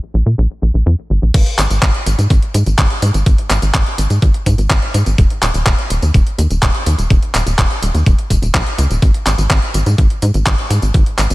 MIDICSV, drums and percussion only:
0, 0, Header, 1, 2, 480
1, 0, Start_track
1, 0, Tempo, 480000
1, 1344, Time_signature, 4, 2, 24, 8
1, 11345, End_track
2, 0, Start_track
2, 0, Title_t, "Drums"
2, 1343, Note_on_c, 9, 36, 127
2, 1344, Note_on_c, 9, 42, 69
2, 1344, Note_on_c, 9, 49, 101
2, 1344, Note_on_c, 9, 54, 30
2, 1443, Note_off_c, 9, 36, 0
2, 1444, Note_off_c, 9, 42, 0
2, 1444, Note_off_c, 9, 49, 0
2, 1444, Note_off_c, 9, 54, 0
2, 1464, Note_on_c, 9, 42, 43
2, 1564, Note_off_c, 9, 42, 0
2, 1585, Note_on_c, 9, 39, 78
2, 1585, Note_on_c, 9, 42, 98
2, 1585, Note_on_c, 9, 54, 74
2, 1685, Note_off_c, 9, 39, 0
2, 1685, Note_off_c, 9, 42, 0
2, 1685, Note_off_c, 9, 54, 0
2, 1705, Note_on_c, 9, 42, 42
2, 1705, Note_on_c, 9, 54, 41
2, 1805, Note_off_c, 9, 42, 0
2, 1805, Note_off_c, 9, 54, 0
2, 1823, Note_on_c, 9, 36, 127
2, 1825, Note_on_c, 9, 39, 119
2, 1825, Note_on_c, 9, 42, 70
2, 1923, Note_off_c, 9, 36, 0
2, 1925, Note_off_c, 9, 39, 0
2, 1925, Note_off_c, 9, 42, 0
2, 1945, Note_on_c, 9, 42, 40
2, 2045, Note_off_c, 9, 42, 0
2, 2064, Note_on_c, 9, 42, 102
2, 2064, Note_on_c, 9, 54, 73
2, 2164, Note_off_c, 9, 42, 0
2, 2164, Note_off_c, 9, 54, 0
2, 2186, Note_on_c, 9, 42, 40
2, 2186, Note_on_c, 9, 54, 40
2, 2286, Note_off_c, 9, 42, 0
2, 2286, Note_off_c, 9, 54, 0
2, 2303, Note_on_c, 9, 36, 114
2, 2306, Note_on_c, 9, 42, 70
2, 2306, Note_on_c, 9, 54, 28
2, 2403, Note_off_c, 9, 36, 0
2, 2406, Note_off_c, 9, 42, 0
2, 2406, Note_off_c, 9, 54, 0
2, 2424, Note_on_c, 9, 42, 43
2, 2524, Note_off_c, 9, 42, 0
2, 2544, Note_on_c, 9, 42, 91
2, 2544, Note_on_c, 9, 54, 64
2, 2644, Note_off_c, 9, 42, 0
2, 2644, Note_off_c, 9, 54, 0
2, 2664, Note_on_c, 9, 42, 40
2, 2664, Note_on_c, 9, 54, 39
2, 2764, Note_off_c, 9, 42, 0
2, 2764, Note_off_c, 9, 54, 0
2, 2783, Note_on_c, 9, 36, 123
2, 2784, Note_on_c, 9, 39, 121
2, 2784, Note_on_c, 9, 42, 75
2, 2883, Note_off_c, 9, 36, 0
2, 2884, Note_off_c, 9, 39, 0
2, 2884, Note_off_c, 9, 42, 0
2, 2904, Note_on_c, 9, 42, 41
2, 3004, Note_off_c, 9, 42, 0
2, 3023, Note_on_c, 9, 42, 96
2, 3023, Note_on_c, 9, 54, 66
2, 3123, Note_off_c, 9, 42, 0
2, 3123, Note_off_c, 9, 54, 0
2, 3143, Note_on_c, 9, 42, 43
2, 3143, Note_on_c, 9, 54, 42
2, 3243, Note_off_c, 9, 42, 0
2, 3243, Note_off_c, 9, 54, 0
2, 3263, Note_on_c, 9, 36, 127
2, 3264, Note_on_c, 9, 42, 65
2, 3264, Note_on_c, 9, 54, 30
2, 3363, Note_off_c, 9, 36, 0
2, 3364, Note_off_c, 9, 42, 0
2, 3364, Note_off_c, 9, 54, 0
2, 3384, Note_on_c, 9, 42, 42
2, 3484, Note_off_c, 9, 42, 0
2, 3502, Note_on_c, 9, 39, 80
2, 3502, Note_on_c, 9, 42, 96
2, 3502, Note_on_c, 9, 54, 70
2, 3602, Note_off_c, 9, 39, 0
2, 3602, Note_off_c, 9, 42, 0
2, 3602, Note_off_c, 9, 54, 0
2, 3623, Note_on_c, 9, 42, 42
2, 3623, Note_on_c, 9, 54, 39
2, 3723, Note_off_c, 9, 42, 0
2, 3723, Note_off_c, 9, 54, 0
2, 3743, Note_on_c, 9, 36, 127
2, 3743, Note_on_c, 9, 39, 118
2, 3743, Note_on_c, 9, 42, 66
2, 3743, Note_on_c, 9, 54, 28
2, 3843, Note_off_c, 9, 36, 0
2, 3843, Note_off_c, 9, 39, 0
2, 3843, Note_off_c, 9, 42, 0
2, 3843, Note_off_c, 9, 54, 0
2, 3863, Note_on_c, 9, 42, 39
2, 3963, Note_off_c, 9, 42, 0
2, 3983, Note_on_c, 9, 42, 101
2, 3983, Note_on_c, 9, 54, 70
2, 4083, Note_off_c, 9, 42, 0
2, 4083, Note_off_c, 9, 54, 0
2, 4103, Note_on_c, 9, 42, 41
2, 4103, Note_on_c, 9, 54, 39
2, 4203, Note_off_c, 9, 42, 0
2, 4203, Note_off_c, 9, 54, 0
2, 4223, Note_on_c, 9, 36, 123
2, 4224, Note_on_c, 9, 42, 64
2, 4224, Note_on_c, 9, 54, 28
2, 4323, Note_off_c, 9, 36, 0
2, 4324, Note_off_c, 9, 42, 0
2, 4324, Note_off_c, 9, 54, 0
2, 4343, Note_on_c, 9, 42, 42
2, 4443, Note_off_c, 9, 42, 0
2, 4463, Note_on_c, 9, 36, 66
2, 4463, Note_on_c, 9, 42, 90
2, 4463, Note_on_c, 9, 54, 68
2, 4563, Note_off_c, 9, 36, 0
2, 4563, Note_off_c, 9, 42, 0
2, 4563, Note_off_c, 9, 54, 0
2, 4583, Note_on_c, 9, 42, 40
2, 4583, Note_on_c, 9, 54, 38
2, 4683, Note_off_c, 9, 42, 0
2, 4683, Note_off_c, 9, 54, 0
2, 4702, Note_on_c, 9, 39, 123
2, 4702, Note_on_c, 9, 42, 70
2, 4702, Note_on_c, 9, 54, 30
2, 4703, Note_on_c, 9, 36, 124
2, 4802, Note_off_c, 9, 39, 0
2, 4802, Note_off_c, 9, 42, 0
2, 4802, Note_off_c, 9, 54, 0
2, 4803, Note_off_c, 9, 36, 0
2, 4823, Note_on_c, 9, 42, 40
2, 4923, Note_off_c, 9, 42, 0
2, 4943, Note_on_c, 9, 42, 89
2, 4943, Note_on_c, 9, 54, 69
2, 5043, Note_off_c, 9, 42, 0
2, 5043, Note_off_c, 9, 54, 0
2, 5063, Note_on_c, 9, 42, 40
2, 5063, Note_on_c, 9, 54, 41
2, 5163, Note_off_c, 9, 42, 0
2, 5163, Note_off_c, 9, 54, 0
2, 5183, Note_on_c, 9, 36, 127
2, 5183, Note_on_c, 9, 42, 66
2, 5183, Note_on_c, 9, 54, 27
2, 5283, Note_off_c, 9, 36, 0
2, 5283, Note_off_c, 9, 42, 0
2, 5283, Note_off_c, 9, 54, 0
2, 5304, Note_on_c, 9, 42, 40
2, 5404, Note_off_c, 9, 42, 0
2, 5424, Note_on_c, 9, 39, 80
2, 5424, Note_on_c, 9, 42, 91
2, 5424, Note_on_c, 9, 54, 73
2, 5524, Note_off_c, 9, 39, 0
2, 5524, Note_off_c, 9, 42, 0
2, 5524, Note_off_c, 9, 54, 0
2, 5544, Note_on_c, 9, 42, 39
2, 5544, Note_on_c, 9, 54, 38
2, 5644, Note_off_c, 9, 42, 0
2, 5644, Note_off_c, 9, 54, 0
2, 5664, Note_on_c, 9, 36, 124
2, 5664, Note_on_c, 9, 39, 123
2, 5664, Note_on_c, 9, 42, 60
2, 5764, Note_off_c, 9, 36, 0
2, 5764, Note_off_c, 9, 39, 0
2, 5764, Note_off_c, 9, 42, 0
2, 5785, Note_on_c, 9, 42, 40
2, 5885, Note_off_c, 9, 42, 0
2, 5904, Note_on_c, 9, 42, 97
2, 5904, Note_on_c, 9, 54, 69
2, 6004, Note_off_c, 9, 42, 0
2, 6004, Note_off_c, 9, 54, 0
2, 6025, Note_on_c, 9, 42, 41
2, 6025, Note_on_c, 9, 54, 38
2, 6125, Note_off_c, 9, 42, 0
2, 6125, Note_off_c, 9, 54, 0
2, 6144, Note_on_c, 9, 36, 121
2, 6146, Note_on_c, 9, 42, 62
2, 6146, Note_on_c, 9, 54, 28
2, 6244, Note_off_c, 9, 36, 0
2, 6246, Note_off_c, 9, 42, 0
2, 6246, Note_off_c, 9, 54, 0
2, 6266, Note_on_c, 9, 42, 41
2, 6366, Note_off_c, 9, 42, 0
2, 6386, Note_on_c, 9, 42, 89
2, 6386, Note_on_c, 9, 54, 61
2, 6486, Note_off_c, 9, 42, 0
2, 6486, Note_off_c, 9, 54, 0
2, 6505, Note_on_c, 9, 42, 37
2, 6505, Note_on_c, 9, 54, 37
2, 6605, Note_off_c, 9, 42, 0
2, 6605, Note_off_c, 9, 54, 0
2, 6624, Note_on_c, 9, 36, 121
2, 6625, Note_on_c, 9, 39, 124
2, 6625, Note_on_c, 9, 42, 67
2, 6625, Note_on_c, 9, 54, 29
2, 6724, Note_off_c, 9, 36, 0
2, 6725, Note_off_c, 9, 39, 0
2, 6725, Note_off_c, 9, 42, 0
2, 6725, Note_off_c, 9, 54, 0
2, 6745, Note_on_c, 9, 42, 39
2, 6845, Note_off_c, 9, 42, 0
2, 6864, Note_on_c, 9, 42, 93
2, 6864, Note_on_c, 9, 54, 67
2, 6964, Note_off_c, 9, 42, 0
2, 6964, Note_off_c, 9, 54, 0
2, 6985, Note_on_c, 9, 42, 41
2, 6985, Note_on_c, 9, 54, 41
2, 7085, Note_off_c, 9, 42, 0
2, 7085, Note_off_c, 9, 54, 0
2, 7104, Note_on_c, 9, 36, 127
2, 7106, Note_on_c, 9, 42, 64
2, 7106, Note_on_c, 9, 54, 30
2, 7204, Note_off_c, 9, 36, 0
2, 7206, Note_off_c, 9, 42, 0
2, 7206, Note_off_c, 9, 54, 0
2, 7226, Note_on_c, 9, 42, 38
2, 7326, Note_off_c, 9, 42, 0
2, 7345, Note_on_c, 9, 39, 71
2, 7345, Note_on_c, 9, 42, 93
2, 7345, Note_on_c, 9, 54, 70
2, 7445, Note_off_c, 9, 39, 0
2, 7445, Note_off_c, 9, 42, 0
2, 7445, Note_off_c, 9, 54, 0
2, 7466, Note_on_c, 9, 42, 40
2, 7466, Note_on_c, 9, 54, 39
2, 7566, Note_off_c, 9, 42, 0
2, 7566, Note_off_c, 9, 54, 0
2, 7584, Note_on_c, 9, 36, 127
2, 7586, Note_on_c, 9, 39, 125
2, 7586, Note_on_c, 9, 42, 63
2, 7684, Note_off_c, 9, 36, 0
2, 7686, Note_off_c, 9, 39, 0
2, 7686, Note_off_c, 9, 42, 0
2, 7706, Note_on_c, 9, 42, 36
2, 7806, Note_off_c, 9, 42, 0
2, 7826, Note_on_c, 9, 42, 93
2, 7826, Note_on_c, 9, 54, 69
2, 7926, Note_off_c, 9, 42, 0
2, 7926, Note_off_c, 9, 54, 0
2, 7945, Note_on_c, 9, 42, 40
2, 7945, Note_on_c, 9, 54, 38
2, 8045, Note_off_c, 9, 42, 0
2, 8045, Note_off_c, 9, 54, 0
2, 8064, Note_on_c, 9, 36, 124
2, 8065, Note_on_c, 9, 42, 65
2, 8065, Note_on_c, 9, 54, 29
2, 8164, Note_off_c, 9, 36, 0
2, 8165, Note_off_c, 9, 42, 0
2, 8165, Note_off_c, 9, 54, 0
2, 8186, Note_on_c, 9, 42, 41
2, 8286, Note_off_c, 9, 42, 0
2, 8304, Note_on_c, 9, 36, 60
2, 8306, Note_on_c, 9, 42, 87
2, 8306, Note_on_c, 9, 54, 65
2, 8404, Note_off_c, 9, 36, 0
2, 8406, Note_off_c, 9, 42, 0
2, 8406, Note_off_c, 9, 54, 0
2, 8425, Note_on_c, 9, 42, 37
2, 8425, Note_on_c, 9, 54, 37
2, 8525, Note_off_c, 9, 42, 0
2, 8525, Note_off_c, 9, 54, 0
2, 8544, Note_on_c, 9, 36, 120
2, 8546, Note_on_c, 9, 39, 127
2, 8546, Note_on_c, 9, 42, 65
2, 8644, Note_off_c, 9, 36, 0
2, 8646, Note_off_c, 9, 39, 0
2, 8646, Note_off_c, 9, 42, 0
2, 8665, Note_on_c, 9, 42, 38
2, 8765, Note_off_c, 9, 42, 0
2, 8785, Note_on_c, 9, 42, 85
2, 8785, Note_on_c, 9, 54, 69
2, 8885, Note_off_c, 9, 42, 0
2, 8885, Note_off_c, 9, 54, 0
2, 8906, Note_on_c, 9, 42, 40
2, 8906, Note_on_c, 9, 54, 38
2, 9006, Note_off_c, 9, 42, 0
2, 9006, Note_off_c, 9, 54, 0
2, 9023, Note_on_c, 9, 36, 127
2, 9025, Note_on_c, 9, 42, 61
2, 9025, Note_on_c, 9, 54, 29
2, 9123, Note_off_c, 9, 36, 0
2, 9125, Note_off_c, 9, 42, 0
2, 9125, Note_off_c, 9, 54, 0
2, 9144, Note_on_c, 9, 42, 40
2, 9244, Note_off_c, 9, 42, 0
2, 9264, Note_on_c, 9, 39, 72
2, 9264, Note_on_c, 9, 42, 92
2, 9264, Note_on_c, 9, 54, 76
2, 9364, Note_off_c, 9, 39, 0
2, 9364, Note_off_c, 9, 42, 0
2, 9364, Note_off_c, 9, 54, 0
2, 9384, Note_on_c, 9, 42, 37
2, 9384, Note_on_c, 9, 54, 38
2, 9484, Note_off_c, 9, 42, 0
2, 9484, Note_off_c, 9, 54, 0
2, 9503, Note_on_c, 9, 36, 124
2, 9504, Note_on_c, 9, 39, 123
2, 9504, Note_on_c, 9, 42, 63
2, 9504, Note_on_c, 9, 54, 31
2, 9603, Note_off_c, 9, 36, 0
2, 9604, Note_off_c, 9, 39, 0
2, 9604, Note_off_c, 9, 42, 0
2, 9604, Note_off_c, 9, 54, 0
2, 9623, Note_on_c, 9, 42, 37
2, 9723, Note_off_c, 9, 42, 0
2, 9743, Note_on_c, 9, 42, 93
2, 9743, Note_on_c, 9, 54, 74
2, 9843, Note_off_c, 9, 42, 0
2, 9843, Note_off_c, 9, 54, 0
2, 9863, Note_on_c, 9, 42, 39
2, 9863, Note_on_c, 9, 54, 40
2, 9963, Note_off_c, 9, 42, 0
2, 9963, Note_off_c, 9, 54, 0
2, 9983, Note_on_c, 9, 36, 118
2, 9983, Note_on_c, 9, 42, 66
2, 9983, Note_on_c, 9, 54, 30
2, 10083, Note_off_c, 9, 36, 0
2, 10083, Note_off_c, 9, 42, 0
2, 10083, Note_off_c, 9, 54, 0
2, 10103, Note_on_c, 9, 42, 40
2, 10203, Note_off_c, 9, 42, 0
2, 10222, Note_on_c, 9, 42, 85
2, 10222, Note_on_c, 9, 54, 65
2, 10322, Note_off_c, 9, 42, 0
2, 10322, Note_off_c, 9, 54, 0
2, 10342, Note_on_c, 9, 42, 38
2, 10342, Note_on_c, 9, 54, 39
2, 10442, Note_off_c, 9, 42, 0
2, 10442, Note_off_c, 9, 54, 0
2, 10463, Note_on_c, 9, 36, 118
2, 10463, Note_on_c, 9, 39, 122
2, 10463, Note_on_c, 9, 42, 68
2, 10463, Note_on_c, 9, 54, 31
2, 10563, Note_off_c, 9, 36, 0
2, 10563, Note_off_c, 9, 39, 0
2, 10563, Note_off_c, 9, 42, 0
2, 10563, Note_off_c, 9, 54, 0
2, 10583, Note_on_c, 9, 42, 38
2, 10683, Note_off_c, 9, 42, 0
2, 10705, Note_on_c, 9, 42, 90
2, 10705, Note_on_c, 9, 54, 71
2, 10805, Note_off_c, 9, 42, 0
2, 10805, Note_off_c, 9, 54, 0
2, 10824, Note_on_c, 9, 42, 40
2, 10824, Note_on_c, 9, 54, 43
2, 10924, Note_off_c, 9, 42, 0
2, 10924, Note_off_c, 9, 54, 0
2, 10943, Note_on_c, 9, 36, 127
2, 10944, Note_on_c, 9, 42, 65
2, 10944, Note_on_c, 9, 54, 32
2, 11043, Note_off_c, 9, 36, 0
2, 11044, Note_off_c, 9, 42, 0
2, 11044, Note_off_c, 9, 54, 0
2, 11063, Note_on_c, 9, 42, 41
2, 11163, Note_off_c, 9, 42, 0
2, 11184, Note_on_c, 9, 39, 72
2, 11184, Note_on_c, 9, 42, 97
2, 11184, Note_on_c, 9, 54, 72
2, 11284, Note_off_c, 9, 39, 0
2, 11284, Note_off_c, 9, 42, 0
2, 11284, Note_off_c, 9, 54, 0
2, 11304, Note_on_c, 9, 42, 40
2, 11304, Note_on_c, 9, 54, 41
2, 11345, Note_off_c, 9, 42, 0
2, 11345, Note_off_c, 9, 54, 0
2, 11345, End_track
0, 0, End_of_file